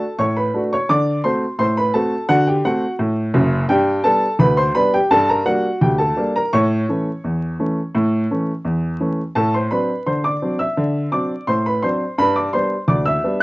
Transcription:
Already playing: A4 A5
0.18 A2 C#5 C#6
0.36 B4 B5
0.54 A3 D4 F#4
0.73 C#5 C#6
0.89 D3 D5 D6
1.24 A3 C4 F#4 C5 C6
1.59 A2 C5 C6
1.77 B4 B5
1.94 A3 C4 F#4 A4 A5
2.29 D3 F#4 F#5
2.47 G4 G5
2.65 A3 C4 F#4 F#5
2.99 A2
3.34 F#1 F#2
3.69 G2 G4 G5
4.04 G3 B3 D4 A4 A5
4.39 D2 B4 B5
4.57 C5 C6
4.75 G3 B3 D4 B4 B5
4.94 G4 G5
5.11 G2 A4 A5
5.29 A#4 A#5
5.46 G3 A#3 D4 F#4 F#5
5.81 D2 G4 G5
5.98 A4 A5
6.17 G3 A#3 D4
6.36 A#4 A#5
6.53 A2 C#5 C#6
6.89 E3 A3 C#4
7.24 E2
7.59 E3 A3 C#4
7.95 A2
8.31 E3 A3 C#4
8.65 E2
9.00 E3 A3 C#4
9.35 A2 A4 A5
9.54 C5 C6
9.71 F#3 C4 D4 B4 B5
10.07 D3 C5 C6
10.24 D5 D6
10.42 F#3 C4 D4
10.59 E5 E6
10.77 D3
11.12 F#3 C4 D4 D5 D6
11.47 A2 C5 C6
11.66 B4 B5
11.83 F#3 C4 D4 C5 C6
12.18 G2 B4 B5
12.36 D5 D6
12.53 G3 B3 D4 C5 C6
12.88 D2 D5 D6
13.05 E5 E6
13.24 G3 B3 D4

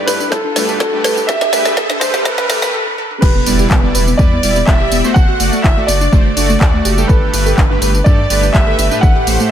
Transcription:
Already playing: G2 A3 G4 B4, riser
0.06 B4, snare, open hi-hat, tambourine
0.20 D4, tambourine
0.30 A4, kick, snare, tambourine
0.44 D4
0.56 G2 A3 D4 G4 B4, snare, open hi-hat, tambourine
0.69 A4, tambourine
0.78 D4 A4, kick, snare, tambourine
0.93 G2 A3 D4 G4 B4
1.04 B4, snare, open hi-hat, tambourine
1.17 D4, tambourine
1.27 A4 E5, kick, snare, tambourine
1.41 D4, snare
1.53 G2 A3 D4 G4 B4, snare, open hi-hat, tambourine
1.65 A4, snare, tambourine
1.77 A4, kick, snare, tambourine
1.90 D4, snare
2.00 G2 A3 D4 G4 B4 C5, snare, open hi-hat, tambourine
2.14 A4, snare, tambourine
2.24 G2 A3 G4 A4 B4, kick, snare, tambourine
2.38 D4, snare
2.49 G2 A3 G4 A4 B4, snare, open hi-hat, tambourine
2.62 D4, snare, tambourine
2.74 A4
2.87 D4
2.98 A4
3.11 D4
3.21 E1 G4 B4, kick, crash, tambourine, impact
3.35 B3
3.46 E1 G3 B3 E4 D5, open hi-hat, tambourine
3.59 G4, tambourine
3.70 E1 B3, kick, clap, tambourine
3.83 G3 B3 E4 D5
3.95 E1 B4, open hi-hat, tambourine
4.07 B3, tambourine
4.17 E2 G3 B3 E4 B4 D5, kick, tambourine
4.32 B3
4.43 E1 G3 E4 D5, open hi-hat, tambourine
4.56 B3, tambourine
4.66 E1 B3 E4 D5 E5, kick, clap, tambourine
4.80 G4
4.92 E1 B3, open hi-hat, tambourine
5.04 A3 B3 F#4 C5, tambourine
5.14 F#1 B3 F#5, kick, tambourine
5.28 F#4
5.40 F#1 A3 F#4 D5, open hi-hat, tambourine
5.53 A3, tambourine
5.63 F#1 E4 E5, kick, clap, tambourine
5.77 A3 F#4 D5
5.87 F#1 A3 D5, open hi-hat, tambourine
6.01 D4, tambourine
6.12 F#1 A3 F#4 C5, kick, tambourine
6.25 A3
6.37 F#1 A3 D4 F#4 D5, open hi-hat, tambourine
6.49 A3, tambourine
6.61 D2 A3 F#4 D5, kick, clap, tambourine
6.73 A3
6.85 F#1 G4, open hi-hat, tambourine
6.97 G2 A3 G4 A4, tambourine
7.08 G1 A4 B4, kick, tambourine
7.22 D4
7.33 G1 G2 A3 D4 G4 B4, open hi-hat, tambourine
7.46 A4, tambourine
7.57 G1 D4, kick, clap, tambourine
7.70 G2 A3 D4 G4 B4
7.82 G1 B4, open hi-hat, tambourine
7.95 D4, tambourine
8.04 G2 A3 D4 G4 A4 D5, kick, tambourine
8.19 D4
8.30 G1 G2 A3 G4 B4, open hi-hat, tambourine
8.43 D4, tambourine
8.53 G1 G2 A3 D4 B4 E5, kick, clap, tambourine
8.67 A4
8.78 G1 D4, open hi-hat, tambourine
8.91 A2 A3 D4 G4 B4, tambourine
9.01 A1 D4 F#5, kick, tambourine
9.15 G4
9.27 A1 A2 A3 G4 C5, open hi-hat, tambourine
9.40 A3, tambourine

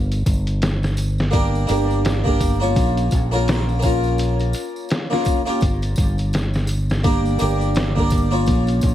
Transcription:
Already playing: G1
0.11 closed hi-hat, tambourine
0.26 G1, kick, closed hi-hat, tambourine
0.47 closed hi-hat, tambourine
0.62 snare, closed hi-hat, tambourine
0.83 snare, tambourine
0.97 closed hi-hat, tambourine
1.18 snare, tambourine
1.31 A#3 D4 G4 A#4, kick, closed hi-hat, tambourine
1.55 tambourine
1.67 G1 A#3 D4 G4 A#4, closed hi-hat, tambourine
1.90 tambourine
2.05 snare, closed hi-hat, tambourine
2.24 A#3 D4 G4 A#4, kick
2.40 kick, closed hi-hat, tambourine
2.60 A#3 C#4 F4 C#5, tambourine
2.76 A#1, kick, closed hi-hat, tambourine
2.97 closed hi-hat, tambourine
3.11 A#1, kick, closed hi-hat, tambourine
3.31 A#3 C#4 F4 A#4, tambourine
3.48 snare, closed hi-hat, tambourine
3.69 tambourine
3.79 A#3 C#4, tambourine
3.83 F4 A#4, kick, closed hi-hat
4.03 tambourine
4.18 closed hi-hat, tambourine
4.39 closed hi-hat, tambourine
4.53 closed hi-hat, tambourine
4.76 tambourine
4.89 snare, closed hi-hat, tambourine
5.10 A#3 C#4 F4 A#4, snare
5.25 kick, closed hi-hat, tambourine
5.46 A#3 C#4 F4 G4, closed hi-hat, tambourine
5.61 G1, kick, closed hi-hat, tambourine
5.82 closed hi-hat, tambourine
5.96 G1, kick, closed hi-hat, tambourine
6.18 closed hi-hat, tambourine
6.33 snare, closed hi-hat, tambourine
6.54 snare, tambourine
6.67 closed hi-hat, tambourine
6.90 snare, tambourine
7.04 A#3 D4 G4 A#4, kick, closed hi-hat, tambourine
7.26 tambourine
7.39 G1 A#3 D4 G4 A#4, closed hi-hat, tambourine
7.61 tambourine
7.75 snare, closed hi-hat, tambourine
7.95 A#3 D4 G4 A#4, kick
8.10 kick, closed hi-hat, tambourine
8.31 A#3 C#4 F4 C#5, tambourine
8.46 A#1, kick, closed hi-hat, tambourine
8.67 closed hi-hat, tambourine
8.81 A#1, kick, closed hi-hat, tambourine

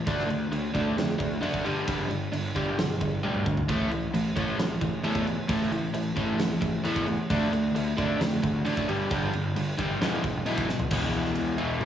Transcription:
0.06 D2 D3 A3 D4, kick, crash
0.19 snare
0.29 D2 D3 A3, crash
0.51 D2 D3 A3, crash
0.74 D2 D3 A3 D4, kick, crash
0.97 F2 D3 A3, snare, crash
1.19 D2 D3 A3, kick, crash
1.41 F#1 D3 A3 D4, crash
1.54 kick
1.65 G1 G2 D3 G3, crash
1.87 G1 G2 D3 G3, kick, crash
2.10 G1 G2 D3, crash
2.32 G1 G2 D3, crash
2.55 G1 G2 D3 G3, kick, crash
2.78 B1 G2 D3, snare, crash
3.01 G1 G2 D3, kick, crash
3.23 D2 G2 D3 G3, high tom
3.34 mid tom
3.46 G2 D3, kick
3.57 floor tom
3.69 A1 A2 E3 A3, kick, crash
3.91 A1 A2 E3, crash
4.13 A1 A2 E3, crash
4.36 A1 A2 E3 A3, kick, crash
4.58 C2 A2 E3, snare, crash
4.81 A1 A2 E3, kick, crash
5.02 E2 A2 E3 A3, crash
5.15 kick
5.26 A2 E3, crash
5.48 A1 A2 E3 A3, kick, crash
5.61 snare
5.71 A1 A2 E3, crash
5.93 A1 A2 E3, crash
6.16 A1 A2 E3 A3, kick, crash
6.38 C2 A2 E3, snare, crash
6.61 A1 A2 E3, kick, crash
6.84 E2 A2 E3 A3, crash
6.96 kick
7.07 A2 E3, crash
7.30 D2 D3 A3 D4, kick, crash
7.52 D2 D3 A3, crash
7.75 D2 D3 A3, crash
7.97 D2 D3 A3 D4, kick, crash
8.20 F2 D3 A3, snare, crash
8.43 D2 D3 A3, kick, crash
8.65 A1 D3 A3 D4, crash
8.77 kick
8.88 G1 G2 D3 G3, crash
9.10 G1 G2 D3 G3, kick, crash
9.33 G1 G2 D3, crash
9.56 G1 G2 D3, crash
9.78 G1 G2 D3 G3, kick, crash
10.01 E1 E2 B2 E3, snare, crash
10.24 E1 E2 B2, kick, crash
10.46 B1 E2 B2 E3, crash
10.58 kick
10.68 E2 B2, snare
10.79 floor tom
10.91 E1 E2 B2 E3, kick, crash
11.13 E1, crash
11.25 snare
11.35 E1, crash
11.58 E1 E2 B2 E3, crash
11.81 high tom

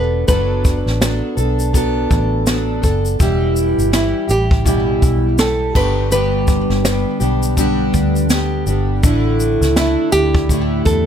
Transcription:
Already playing: E1 B3 D4 A4 B4
0.28 F#1 F#3 B3 D4 A4 B4, kick, shaker
0.65 kick, shaker
0.86 A1, snare
1.00 F#3 B3 D4 A4, snare, shaker
1.37 B1 B3 D4 A4, shaker
1.59 shaker
1.73 F#3 B3 D4 A4, kick, shaker
2.11 A1, kick, shaker
2.46 F#3 B3 D4 A4, snare, shaker
2.82 F#1 B3 D4 A4, kick, shaker
3.05 shaker
3.19 E1 E2 B2 E3 G3 E4 G4, kick, shaker
3.56 shaker
3.78 G1, shaker
3.91 E3 G3 E4 G4, snare, shaker
4.28 A1 E3 G3 E4 G4, shaker
4.51 kick
4.64 E2 B2 E3 G3 E4 G4, kick, shaker
5.02 B1, kick, shaker
5.37 E3 G3 E4 G4 A4, snare, shaker
5.74 G1 G3 B3 D4 G4 B4, kick, crash
6.11 G2 D3 G3 B3 D4 G4 B4, shaker
6.47 kick, shaker
6.70 G1, snare
6.84 G3 B3 D4 G4, snare, shaker
7.20 B1 G3 B3 D4 G4, shaker
7.43 shaker
7.57 G2 D3 G3 B3 D4 G4, kick, shaker
7.94 D2, kick, shaker
8.16 shaker
8.30 G3 B3 D4 G4, snare, shaker
8.66 G1 G3 B3 D4 G4, shaker
9.03 A1 A2 D3 A3 D4 E4, kick, shaker
9.40 shaker
9.61 C#2, snare, shaker
9.76 D3 A3 D4 E4, snare, shaker
10.12 D2 A3 D4 E4 G4, shaker
10.35 kick
10.49 A2 D3 A3 D4 E4, kick, shaker
10.85 E2 A4, kick, shaker

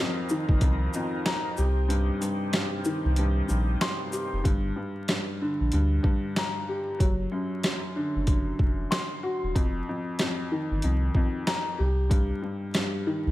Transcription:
Already playing: F3 C4 D#4 A#4
0.00 F2
0.29 D#3, shaker
0.49 G1, kick
0.61 C2 F2, kick, closed hi-hat
0.93 F2, shaker
1.26 A#5, finger snap, snare, closed hi-hat
1.57 C2 C3 G4, shaker
1.88 G2, closed hi-hat
2.21 G2, closed hi-hat, shaker
2.53 G2, finger snap, snare, closed hi-hat
2.84 D#3, shaker
3.05 C2
3.16 G2, closed hi-hat
3.48 A#1 G2, shaker
3.81 C6, finger snap, snare, closed hi-hat
4.12 G4, shaker
4.32 F1
4.44 G1 G2, kick, closed hi-hat
4.76 G2
5.08 G2, snare, closed hi-hat
5.41 D3
5.60 A#1
5.72 D2 G2, closed hi-hat
6.03 G2, kick
6.36 A#5, snare, closed hi-hat
6.69 G4
6.99 F#1 F#3, kick, closed hi-hat
7.32 F#2
7.63 snare, closed hi-hat
7.96 D3
8.15 F#1
8.27 kick, closed hi-hat
8.59 F1, kick
8.91 C6, snare, closed hi-hat
9.23 F#4
9.43 D#1
9.55 F1 F2, kick, closed hi-hat
9.89 F2
10.19 F2, snare, closed hi-hat
10.52 D#3
10.71 G1
10.82 C2 F2, closed hi-hat
11.15 F2, kick
11.47 A#5, snare, closed hi-hat
11.78 C2 G4
12.09 G2, kick, closed hi-hat
12.42 G2
12.74 G2, snare, closed hi-hat
13.07 D#3
13.26 C2

